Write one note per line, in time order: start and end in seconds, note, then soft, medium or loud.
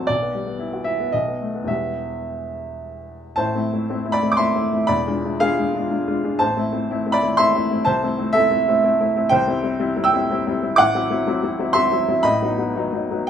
0.00 0.12 A1 medium
0.00 0.12 F#3 medium
0.00 0.12 C4 medium
0.00 0.12 F#4 medium
0.00 0.11 G4 soft
0.00 0.11 F#5 loud
0.00 0.12 A5 loud
0.07 1.10 B1 medium
0.07 0.85 D5 loud
0.22 0.42 B3 soft
0.34 0.55 G3 soft
0.47 0.68 B3 soft
0.59 0.81 E4 medium
0.73 0.86 F#4 soft
0.84 1.08 E4 soft
0.84 1.12 E5 medium
1.00 1.13 B3 medium
1.12 1.67 B1 medium
1.12 1.68 D#5 medium
1.28 1.49 B3 soft
1.41 1.63 A3 soft
1.55 1.65 B3 medium
1.64 3.33 E1 medium
1.64 3.31 E2 medium
1.64 3.32 G3 soft
1.64 3.33 B3 soft
1.64 3.33 G4 soft
1.64 2.82 E5 medium
3.36 3.54 A1 medium
3.36 3.54 A2 medium
3.36 4.09 C5 medium
3.36 4.13 A5 loud
3.55 3.70 A3 medium
3.55 3.70 C4 soft
3.55 3.71 E4 soft
3.73 3.88 A3 soft
3.73 3.88 C4 soft
3.73 3.88 E4 medium
3.90 4.03 A3 medium
3.90 4.04 C4 medium
3.90 4.04 E4 medium
4.05 4.20 A3 soft
4.05 4.20 C4 soft
4.05 4.20 E4 medium
4.12 4.30 D5 medium
4.12 4.31 B5 loud
4.22 4.37 A3 medium
4.22 4.37 C4 medium
4.22 4.37 E4 medium
4.32 4.38 D6 medium
4.37 4.54 A3 medium
4.37 4.54 C4 medium
4.37 4.54 E4 medium
4.37 4.85 E5 medium
4.37 4.88 C6 loud
4.56 4.70 A3 soft
4.56 4.71 C4 soft
4.56 4.71 E4 medium
4.72 4.87 A3 medium
4.72 4.87 C4 soft
4.72 4.88 E4 medium
4.87 5.05 E1 medium
4.87 5.05 E2 medium
4.87 5.36 D5 medium
4.87 5.39 B5 loud
5.07 5.21 G#3 medium
5.07 5.22 D4 soft
5.07 5.22 F4 medium
5.24 5.39 G#3 soft
5.24 5.39 D4 soft
5.24 5.39 F4 medium
5.40 5.56 G#3 medium
5.40 5.56 D4 medium
5.40 5.56 F4 medium
5.40 6.36 G#4 medium
5.40 6.40 F5 loud
5.58 5.73 G#3 soft
5.58 5.73 D4 medium
5.58 5.73 F4 medium
5.75 5.89 G#3 medium
5.75 5.89 D4 medium
5.75 5.90 F4 medium
5.91 6.05 G#3 medium
5.91 6.05 D4 medium
5.91 6.06 F4 medium
6.08 6.22 G#3 soft
6.08 6.22 D4 medium
6.08 6.22 F4 medium
6.24 6.38 G#3 medium
6.24 6.38 D4 medium
6.24 6.38 F4 medium
6.39 6.56 A1 medium
6.39 7.09 C5 medium
6.39 7.13 A5 loud
6.56 6.71 A3 medium
6.56 6.71 C4 medium
6.56 6.71 E4 medium
6.72 6.87 A3 soft
6.72 6.87 C4 medium
6.72 6.87 E4 medium
6.90 7.04 A3 medium
6.90 7.04 C4 medium
6.90 7.04 E4 medium
7.06 7.20 A3 medium
7.06 7.20 C4 medium
7.06 7.21 E4 medium
7.12 7.36 D5 medium
7.12 7.37 B5 loud
7.22 7.37 A3 medium
7.22 7.37 C4 medium
7.22 7.37 E4 medium
7.37 7.53 A3 medium
7.37 7.53 C4 medium
7.37 7.53 E4 medium
7.37 7.83 E5 medium
7.37 7.85 C6 loud
7.55 7.69 A3 medium
7.55 7.69 C4 medium
7.55 7.69 E4 medium
7.71 7.85 A3 medium
7.71 7.85 C4 medium
7.71 7.85 E4 medium
7.85 8.02 C2 medium
7.85 8.30 C5 medium
7.85 8.33 A5 loud
8.03 8.17 A3 medium
8.03 8.17 C4 medium
8.03 8.17 E4 medium
8.18 8.32 A3 medium
8.18 8.33 C4 medium
8.18 8.33 E4 medium
8.33 8.49 A3 medium
8.33 8.49 C4 medium
8.33 8.49 E4 medium
8.33 9.26 A4 medium
8.33 9.30 E5 loud
8.51 8.65 A3 medium
8.51 8.65 C4 medium
8.51 8.65 E4 medium
8.68 8.82 A3 medium
8.68 8.82 C4 medium
8.68 8.82 E4 medium
8.84 8.98 A3 medium
8.84 8.98 C4 medium
8.84 8.98 E4 medium
9.00 9.14 A3 medium
9.00 9.14 C4 medium
9.00 9.14 E4 medium
9.16 9.29 A3 medium
9.16 9.30 C4 medium
9.16 9.30 E4 medium
9.29 9.46 C2 medium
9.29 10.01 C5 medium
9.29 10.03 G5 loud
9.47 9.61 G3 medium
9.47 9.61 C4 medium
9.47 9.62 E4 medium
9.63 9.78 G3 medium
9.63 9.78 C4 medium
9.63 9.78 E4 medium
9.79 9.95 G3 medium
9.79 9.95 C4 medium
9.79 9.95 E4 medium
9.96 10.11 G3 medium
9.96 10.12 C4 medium
9.96 10.12 E4 medium
10.04 10.74 G5 loud
10.04 10.77 E6 loud
10.13 10.28 G3 medium
10.13 10.28 C4 medium
10.13 10.28 E4 medium
10.30 10.45 G3 medium
10.30 10.45 C4 medium
10.30 10.45 E4 medium
10.47 10.61 G3 medium
10.47 10.61 C4 medium
10.47 10.61 E4 medium
10.62 10.77 G3 medium
10.62 10.77 C4 medium
10.62 10.77 E4 medium
10.76 10.93 A1 medium
10.76 10.94 A2 medium
10.76 11.71 F#5 loud
10.76 11.74 D6 loud
10.95 11.09 F#3 medium
10.95 11.09 C4 medium
10.95 11.09 E4 medium
11.11 11.25 F#3 medium
11.11 11.25 C4 medium
11.11 11.25 E4 medium
11.27 11.41 F#3 medium
11.27 11.41 C4 medium
11.27 11.42 E4 medium
11.43 11.57 F#3 medium
11.43 11.58 C4 medium
11.43 11.58 E4 medium
11.59 11.73 F#3 medium
11.59 11.74 C4 medium
11.59 11.74 E4 medium
11.73 11.90 F#3 medium
11.73 11.90 C4 medium
11.73 11.90 E4 medium
11.73 12.20 E5 medium
11.73 12.23 C6 loud
11.92 12.06 F#3 medium
11.92 12.06 C4 medium
11.92 12.07 E4 medium
12.09 12.23 F#3 medium
12.09 12.23 C4 medium
12.09 12.23 E4 medium
12.23 12.40 A1 medium
12.23 12.41 A2 medium
12.23 13.23 D#5 loud
12.23 13.27 B5 loud
12.42 12.57 F#3 medium
12.42 12.57 B3 medium
12.42 12.57 D#4 medium
12.59 12.73 F#3 medium
12.59 12.74 B3 medium
12.59 12.74 D#4 medium
12.76 12.91 F#3 medium
12.76 12.91 B3 medium
12.76 12.91 D#4 medium
12.93 13.08 F#3 medium
12.93 13.08 B3 medium
12.93 13.08 D#4 medium
13.11 13.26 F#3 medium
13.11 13.26 B3 medium
13.11 13.26 D#4 medium